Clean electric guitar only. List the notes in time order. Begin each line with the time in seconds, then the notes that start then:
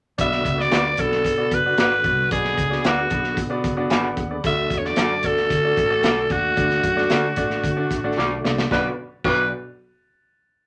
0.72 F#4 B4 D5
1.78 F#4 B4 D5
2.85 F#4 B4 D5
3.91 F#4 B4 D5
4.97 F#4 A4 D5
6.04 F#4 A4 D5
7.11 F#4 A4 D5
8.17 F#4 A4 D5
8.71 F#4 B4 D5
9.25 F#4 B4 D5